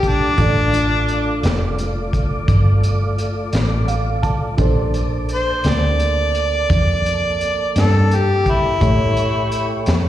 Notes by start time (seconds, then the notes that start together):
Already playing: A#1 A3 D4 F4 D5
0.03 kick, closed hi-hat
0.07 D4
0.36 A1 A3 D4 F4 A4 D5, kick, closed hi-hat
0.73 closed hi-hat
1.08 closed hi-hat
1.43 F1, snare, closed hi-hat
1.78 closed hi-hat
2.13 kick, closed hi-hat
2.48 G1, kick, closed hi-hat
2.83 closed hi-hat
3.18 closed hi-hat
3.53 A1, snare, closed hi-hat
3.88 F5, closed hi-hat
4.22 A5, kick, closed hi-hat
4.57 A#1 A#3 D4 A4 C5 D5, kick, closed hi-hat
4.94 closed hi-hat
5.29 closed hi-hat
5.34 C5
5.64 D2, snare, closed hi-hat
5.68 D5
6.00 closed hi-hat
6.35 closed hi-hat
6.70 F2, kick, closed hi-hat
7.06 closed hi-hat
7.41 closed hi-hat
7.76 G2, snare, closed hi-hat
7.80 A4
8.11 G4, closed hi-hat
8.46 kick, closed hi-hat
8.50 E4
8.79 A2 A3 E4 G4 A4 C#5, kick, closed hi-hat
9.17 closed hi-hat
9.52 closed hi-hat
9.86 F2, snare, closed hi-hat